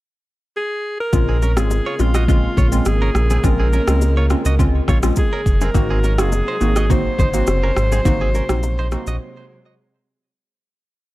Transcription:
0.57 G#4
1.00 A#4
1.13 A#1 C#3 G#3 A#3 C4 C#4 F4, kick, low conga, shaker
1.29 C4 G#4
1.42 C#4 A#4, high bongo, low bongo, shaker
1.56 G#1 G#3 C4 C#4 F4 G#4, cross-stick, shaker
1.71 high bongo, shaker
1.86 F4 C#5
1.99 A#1 G#3 C4 C#4 F4, high bongo, shaker
2.14 F#4 D#5, cross-stick, shaker
2.28 G#3 C4 C#4 F4, kick, low conga, shaker
2.57 A#1 F4 C#5, kick, low bongo, low conga, shaker
2.72 G#3 C4 C#4 F4, shaker
2.85 G#1 G#4, cross-stick, high bongo, shaker
3.02 C#4 A#4
3.15 A#1, cross-stick, shaker
3.30 C4 G#4, low bongo, shaker
3.43 A#1 G#3 C4 C#4 F4 A#4, kick, low conga, shaker
3.60 C4 G#4
3.73 C#4 A#4, high bongo, low bongo, shaker
3.87 C#2 G#3 C4 C#4 F4, cross-stick, shaker
4.01 high bongo, shaker
4.17 F4 C#5
4.30 G#3 C4 C#4 F4, cross-stick, high bongo, shaker
4.45 C#2 F#4 D#5, shaker
4.59 G#3 C4 C#4 F4, kick, low conga, shaker
4.88 A#1 F4 C#5, kick, cross-stick, low bongo, low conga, shaker
5.03 G#3 C4 C#4 F4, cross-stick, shaker
5.16 G#4, kick, high bongo, shaker
5.33 C#4 A#4
5.46 F#1, kick, shaker
5.61 C4 G#4 A#4, low bongo, shaker
5.74 G#1 C3 F#3 A#3 C4 D#4 F#4, kick, low conga, shaker
5.90 C4 G#4
6.04 C#4 A#4, high bongo, low bongo, shaker
6.18 F#1 A#3 C4 D#4 F#4 G#4, cross-stick, shaker
6.32 high bongo, shaker
6.48 D#4 C5
6.61 G#1 A#3 C4 D#4 F#4, high bongo, shaker
6.76 F#4 D#5, cross-stick, shaker
6.90 A#3 C4 D#4 F#4 C5, kick, low conga, shaker
7.19 G#1 D#4 C5, kick, low bongo, low conga, shaker
7.34 A#3 C4 D#4 F#4, shaker
7.47 F#1, cross-stick, high bongo, shaker
7.63 C#4 A#4
7.77 G#1, cross-stick, shaker
7.92 C4 G#4, low bongo, shaker
8.05 G#1 A#3 C4 D#4 F#4, kick, low conga, shaker
8.21 C4 G#4
8.35 C#4 A#4, high bongo, low bongo, shaker
8.49 A#1 A#3 C4 D#4 F#4, cross-stick, shaker
8.63 high bongo, shaker
8.79 D#4 C5
8.92 A#3 C4 D#4 F#4, cross-stick, high bongo, shaker
9.07 A#1 F#4 D#5, shaker

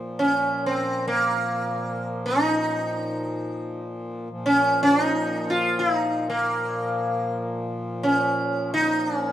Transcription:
Already playing: A#2 F3
0.19 C#4
0.66 C4
1.08 A#3
2.26 D#4
4.30 A#2 F3
4.46 C#4
4.83 C#4
5.03 D#4
5.50 F4
5.79 D#4
6.30 A#3
8.03 C#4
8.74 D#4
9.17 C#4

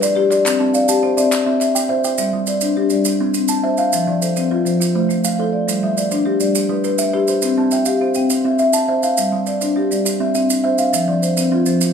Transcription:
Already playing: B4
0.02 D5, clap, maracas
0.15 G4 B4
0.31 D5, clap, maracas
0.45 C4 B4, clap, maracas
0.59 C4 A5
0.73 D5 F5, maracas
0.88 G4 A5, maracas
1.03 G4 C5
1.17 C4 D5 E5, maracas
1.32 C5, clap, maracas
1.45 C4 E5
1.60 E5, clap, maracas
1.75 G5, maracas
1.89 C5 E5
2.04 G5, maracas
2.18 G3 E5, maracas
2.33 G3 E5
2.47 B4 D5, maracas
2.61 D4 C5, maracas
2.76 D4 G4
2.90 G3 D5, maracas
3.05 G4, maracas
3.21 C4
3.34 C4, maracas
3.48 A5, maracas
3.63 C5 E5
3.77 F5, maracas
3.93 F3 E5, maracas
4.07 F3 D5
4.22 A4 C5, maracas
4.36 C4 B4, maracas
4.51 C4 F4
4.65 F3 C5, maracas
4.80 F4, maracas
4.94 A3 C5
5.09 A3, maracas
5.24 F5, maracas
5.39 A4 C5
5.53 D5
5.68 G3 C5, maracas
5.83 G3 E5
5.97 B4 D5, maracas
6.11 D4 C5, maracas
6.25 D4 G4
6.40 G3 D5, maracas
6.55 G4, maracas
6.69 G3 B4
6.84 B4, maracas
6.98 E5, maracas
7.13 G4 B4
7.28 C5, maracas
7.42 C4 B4, maracas
7.57 C4 A5
7.71 E5 G5, maracas
7.85 G4 F5, maracas
8.01 G4 C5
8.14 C4 G5, maracas
8.30 C5, maracas
8.45 C4 E5
8.59 E5, maracas
8.73 A5, maracas
8.88 C5 E5
9.03 F5, maracas
9.17 G3 E5, maracas
9.32 G3 E5
9.47 B4 D5, maracas
9.61 D4 C5, maracas
9.76 D4 G4
9.91 G3 D5, maracas
10.05 G4, maracas
10.20 C4 E5
10.35 C4 E5, maracas
10.50 maracas
10.64 C5 E5
10.78 F5, maracas
10.93 F3 E5, maracas
11.08 F3 D5
11.22 C5, maracas
11.37 C4 B4, maracas
11.52 C4 F4
11.66 F3 C5, maracas
11.81 F4, maracas

